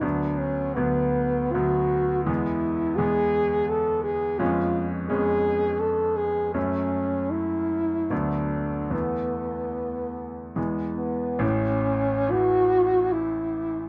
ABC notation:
X:1
M:3/4
L:1/8
Q:1/4=78
K:A
V:1 name="French horn"
D C B,2 F2 | E2 G2 A G | ^E z G2 A G | C2 E2 D2 |
B,4 z B, | C2 F2 E2 |]
V:2 name="Grand piano" clef=bass
[D,,F,B,]2 [D,,F,B,]2 [D,,F,B,]2 | [E,,G,B,]2 [E,,G,B,]4 | [^E,,G,B,C]2 [E,,G,B,C]4 | [F,,F,A,C]4 [D,,F,A,B,]2 |
[E,,E,A,B,]4 [E,,E,G,B,]2 | [A,,,A,,]2 E,4 |]